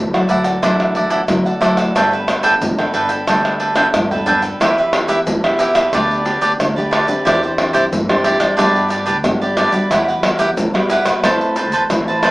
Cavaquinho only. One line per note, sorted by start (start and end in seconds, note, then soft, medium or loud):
0.14 0.28 A4 soft
0.14 0.29 D5 soft
0.14 0.29 F#5 soft
0.29 0.45 E4 medium
0.29 0.44 A4 medium
0.29 0.44 D5 medium
0.29 0.43 F#5 medium
0.44 0.61 A4 soft
0.44 0.61 D5 soft
0.44 0.60 F#5 soft
0.62 0.94 E4 medium
0.62 0.94 A4 medium
0.62 0.95 D5 medium
0.62 0.95 F#5 medium
0.95 1.09 E4 soft
0.95 1.09 A4 medium
0.95 1.10 D5 medium
0.95 1.10 F#5 medium
1.10 1.20 E4 medium
1.10 1.20 A4 medium
1.10 1.21 D5 medium
1.10 1.21 F#5 medium
1.45 1.60 A4 soft
1.45 1.61 D5 soft
1.45 1.61 F#5 soft
1.61 1.77 E4 medium
1.61 1.77 A4 medium
1.61 1.77 D5 medium
1.61 1.76 F#5 medium
1.77 1.94 A4 soft
1.77 1.94 D5 soft
1.77 1.93 F#5 medium
1.95 2.11 D4 medium
1.95 2.11 A4 medium
1.95 2.11 B4 medium
1.95 2.10 G5 medium
2.12 2.42 A4 soft
2.12 2.43 B4 soft
2.12 2.43 G5 soft
2.43 2.53 D4 medium
2.43 2.53 A4 medium
2.43 2.53 B4 medium
2.43 2.53 G5 medium
2.78 2.93 A4 soft
2.78 2.93 B4 soft
2.78 2.94 G5 soft
2.94 3.09 D4 medium
2.94 3.10 A4 medium
2.94 3.09 B4 medium
2.94 3.08 G5 medium
3.09 3.27 A4 soft
3.09 3.26 B4 soft
3.09 3.26 G5 soft
3.28 3.58 D4 medium
3.28 3.59 A4 medium
3.28 3.59 B4 medium
3.28 3.59 G5 medium
3.59 3.74 D4 soft
3.59 3.75 A4 soft
3.59 3.75 B4 medium
3.59 3.75 G5 medium
3.75 3.85 D4 medium
3.75 3.86 A4 medium
3.75 3.86 B4 medium
3.75 3.86 G5 medium
4.11 4.25 A4 soft
4.11 4.26 B4 soft
4.11 4.26 G5 soft
4.26 4.42 D4 medium
4.26 4.42 A4 medium
4.26 4.42 B4 medium
4.26 4.41 G5 medium
4.42 4.59 A4 soft
4.42 4.59 B4 soft
4.42 4.58 G5 soft
4.61 4.76 E4 medium
4.61 4.76 G4 medium
4.61 4.77 B4 medium
4.61 4.77 E5 medium
4.79 5.07 G4 soft
4.79 5.08 B4 soft
4.79 5.08 E5 soft
5.08 5.18 E4 medium
5.08 5.18 G4 medium
5.08 5.19 B4 medium
5.08 5.19 E5 medium
5.44 5.59 G4 soft
5.44 5.59 B4 soft
5.44 5.59 E5 soft
5.59 5.75 E4 medium
5.59 5.75 G4 medium
5.59 5.75 B4 medium
5.59 5.74 E5 medium
5.75 5.92 G4 soft
5.75 5.92 B4 soft
5.75 5.91 E5 soft
5.94 6.24 D4 medium
5.94 6.25 G4 medium
5.94 6.25 B4 medium
5.94 6.26 D5 medium
6.25 6.40 D4 medium
6.25 6.40 G4 soft
6.25 6.41 B4 soft
6.25 6.41 D5 medium
6.41 6.51 D4 medium
6.41 6.51 G4 medium
6.41 6.51 B4 medium
6.41 6.52 D5 medium
6.76 6.91 G4 soft
6.76 6.91 B4 soft
6.76 6.91 D5 medium
6.91 7.07 D4 medium
6.91 7.08 G4 medium
6.91 7.07 B4 medium
6.91 7.06 D5 medium
7.07 7.25 G4 soft
7.07 7.24 B4 soft
7.07 7.24 D5 soft
7.25 7.41 E4 medium
7.25 7.41 G4 medium
7.25 7.41 C5 medium
7.25 7.42 D5 medium
7.43 7.72 G4 soft
7.43 7.73 C5 soft
7.43 7.73 D5 soft
7.73 7.83 E4 medium
7.73 7.84 G4 medium
7.73 7.84 C5 medium
7.73 7.84 D5 medium
8.09 8.23 G4 soft
8.09 8.24 C5 soft
8.09 8.24 D5 soft
8.24 8.40 E4 medium
8.24 8.40 G4 medium
8.24 8.39 C5 medium
8.24 8.38 D5 medium
8.39 8.56 G4 soft
8.39 8.57 C5 soft
8.39 8.56 D5 soft
8.57 8.87 D4 medium
8.57 8.89 G4 medium
8.57 8.89 B4 medium
8.57 8.90 D5 medium
8.89 9.04 D4 soft
8.89 9.05 G4 soft
8.89 9.05 B4 medium
8.89 9.05 D5 medium
9.06 9.16 D4 medium
9.06 9.16 G4 medium
9.06 9.16 B4 medium
9.06 9.17 D5 medium
9.41 9.56 G4 soft
9.41 9.57 B4 soft
9.41 9.57 D5 medium
9.57 9.73 D4 medium
9.57 9.73 G4 medium
9.57 9.72 B4 medium
9.57 9.71 D5 medium
9.73 9.90 G4 soft
9.73 9.89 B4 soft
9.73 9.89 D5 soft
9.92 10.07 E4 medium
9.92 10.07 G4 medium
9.92 10.07 B4 medium
9.92 10.07 F#5 medium
10.08 10.38 G4 soft
10.08 10.38 B4 soft
10.08 10.38 F#5 soft
10.39 10.49 E4 medium
10.39 10.49 G4 medium
10.39 10.49 B4 medium
10.39 10.49 F#5 medium
10.74 10.89 G4 soft
10.74 10.90 B4 soft
10.74 10.89 F#5 soft
10.90 11.06 E4 medium
10.90 11.06 G4 medium
10.90 11.06 B4 medium
10.90 11.04 F#5 medium
11.05 11.23 G4 soft
11.05 11.22 B4 soft
11.05 11.22 F#5 soft
11.24 11.55 A4 medium
11.24 11.56 B4 medium
11.24 11.56 C5 medium
11.24 11.57 A5 medium
11.56 11.72 A4 soft
11.56 11.72 B4 medium
11.56 11.72 C5 soft
11.56 11.72 A5 medium
11.73 11.82 A4 medium
11.73 11.83 B4 medium
11.73 11.82 C5 medium
11.73 11.83 A5 medium
12.08 12.23 B4 soft
12.08 12.22 C5 soft
12.08 12.23 A5 medium
12.23 12.31 A4 medium
12.23 12.31 B4 medium
12.23 12.31 C5 medium
12.23 12.31 A5 medium